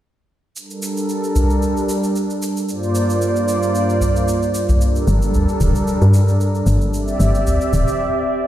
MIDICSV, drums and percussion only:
0, 0, Header, 1, 3, 480
1, 0, Start_track
1, 0, Tempo, 530973
1, 509, Time_signature, 4, 2, 24, 8
1, 7659, End_track
2, 0, Start_track
2, 0, Title_t, "Udu"
2, 1226, Note_on_c, 9, 64, 77
2, 1316, Note_off_c, 9, 64, 0
2, 3622, Note_on_c, 9, 64, 79
2, 3713, Note_off_c, 9, 64, 0
2, 4241, Note_on_c, 9, 64, 86
2, 4331, Note_off_c, 9, 64, 0
2, 5070, Note_on_c, 9, 64, 81
2, 5161, Note_off_c, 9, 64, 0
2, 7659, End_track
3, 0, Start_track
3, 0, Title_t, "Drums"
3, 508, Note_on_c, 9, 82, 39
3, 598, Note_off_c, 9, 82, 0
3, 638, Note_on_c, 9, 82, 19
3, 728, Note_off_c, 9, 82, 0
3, 746, Note_on_c, 9, 82, 70
3, 836, Note_off_c, 9, 82, 0
3, 877, Note_on_c, 9, 82, 29
3, 967, Note_off_c, 9, 82, 0
3, 986, Note_on_c, 9, 82, 37
3, 1077, Note_off_c, 9, 82, 0
3, 1119, Note_on_c, 9, 82, 20
3, 1210, Note_off_c, 9, 82, 0
3, 1226, Note_on_c, 9, 82, 67
3, 1317, Note_off_c, 9, 82, 0
3, 1358, Note_on_c, 9, 82, 28
3, 1448, Note_off_c, 9, 82, 0
3, 1468, Note_on_c, 9, 82, 37
3, 1558, Note_off_c, 9, 82, 0
3, 1599, Note_on_c, 9, 82, 20
3, 1690, Note_off_c, 9, 82, 0
3, 1709, Note_on_c, 9, 82, 65
3, 1800, Note_off_c, 9, 82, 0
3, 1840, Note_on_c, 9, 82, 30
3, 1931, Note_off_c, 9, 82, 0
3, 1950, Note_on_c, 9, 82, 40
3, 2040, Note_off_c, 9, 82, 0
3, 2081, Note_on_c, 9, 82, 20
3, 2172, Note_off_c, 9, 82, 0
3, 2190, Note_on_c, 9, 82, 67
3, 2280, Note_off_c, 9, 82, 0
3, 2320, Note_on_c, 9, 82, 29
3, 2411, Note_off_c, 9, 82, 0
3, 2429, Note_on_c, 9, 82, 41
3, 2520, Note_off_c, 9, 82, 0
3, 2560, Note_on_c, 9, 82, 20
3, 2651, Note_off_c, 9, 82, 0
3, 2667, Note_on_c, 9, 82, 66
3, 2758, Note_off_c, 9, 82, 0
3, 2800, Note_on_c, 9, 82, 31
3, 2891, Note_off_c, 9, 82, 0
3, 2908, Note_on_c, 9, 82, 38
3, 2998, Note_off_c, 9, 82, 0
3, 3039, Note_on_c, 9, 82, 22
3, 3130, Note_off_c, 9, 82, 0
3, 3148, Note_on_c, 9, 82, 69
3, 3238, Note_off_c, 9, 82, 0
3, 3279, Note_on_c, 9, 82, 30
3, 3370, Note_off_c, 9, 82, 0
3, 3390, Note_on_c, 9, 82, 38
3, 3481, Note_off_c, 9, 82, 0
3, 3522, Note_on_c, 9, 82, 22
3, 3612, Note_off_c, 9, 82, 0
3, 3631, Note_on_c, 9, 82, 68
3, 3721, Note_off_c, 9, 82, 0
3, 3763, Note_on_c, 9, 82, 30
3, 3853, Note_off_c, 9, 82, 0
3, 3871, Note_on_c, 9, 82, 41
3, 3961, Note_off_c, 9, 82, 0
3, 4001, Note_on_c, 9, 82, 20
3, 4091, Note_off_c, 9, 82, 0
3, 4107, Note_on_c, 9, 82, 73
3, 4198, Note_off_c, 9, 82, 0
3, 4241, Note_on_c, 9, 82, 33
3, 4332, Note_off_c, 9, 82, 0
3, 4351, Note_on_c, 9, 82, 42
3, 4441, Note_off_c, 9, 82, 0
3, 4481, Note_on_c, 9, 82, 21
3, 4571, Note_off_c, 9, 82, 0
3, 4589, Note_on_c, 9, 82, 67
3, 4679, Note_off_c, 9, 82, 0
3, 4720, Note_on_c, 9, 82, 32
3, 4810, Note_off_c, 9, 82, 0
3, 4828, Note_on_c, 9, 82, 41
3, 4919, Note_off_c, 9, 82, 0
3, 4960, Note_on_c, 9, 82, 21
3, 5050, Note_off_c, 9, 82, 0
3, 5068, Note_on_c, 9, 82, 74
3, 5159, Note_off_c, 9, 82, 0
3, 5201, Note_on_c, 9, 82, 32
3, 5291, Note_off_c, 9, 82, 0
3, 5310, Note_on_c, 9, 82, 41
3, 5401, Note_off_c, 9, 82, 0
3, 5440, Note_on_c, 9, 82, 21
3, 5530, Note_off_c, 9, 82, 0
3, 5550, Note_on_c, 9, 82, 72
3, 5640, Note_off_c, 9, 82, 0
3, 5680, Note_on_c, 9, 82, 30
3, 5771, Note_off_c, 9, 82, 0
3, 5791, Note_on_c, 9, 82, 42
3, 5881, Note_off_c, 9, 82, 0
3, 5921, Note_on_c, 9, 82, 22
3, 6011, Note_off_c, 9, 82, 0
3, 6028, Note_on_c, 9, 82, 73
3, 6118, Note_off_c, 9, 82, 0
3, 6159, Note_on_c, 9, 82, 33
3, 6250, Note_off_c, 9, 82, 0
3, 6271, Note_on_c, 9, 82, 40
3, 6361, Note_off_c, 9, 82, 0
3, 6400, Note_on_c, 9, 82, 22
3, 6490, Note_off_c, 9, 82, 0
3, 6509, Note_on_c, 9, 82, 72
3, 6600, Note_off_c, 9, 82, 0
3, 6642, Note_on_c, 9, 82, 32
3, 6732, Note_off_c, 9, 82, 0
3, 6752, Note_on_c, 9, 82, 41
3, 6842, Note_off_c, 9, 82, 0
3, 6881, Note_on_c, 9, 82, 22
3, 6971, Note_off_c, 9, 82, 0
3, 6991, Note_on_c, 9, 82, 73
3, 7081, Note_off_c, 9, 82, 0
3, 7123, Note_on_c, 9, 82, 30
3, 7213, Note_off_c, 9, 82, 0
3, 7659, End_track
0, 0, End_of_file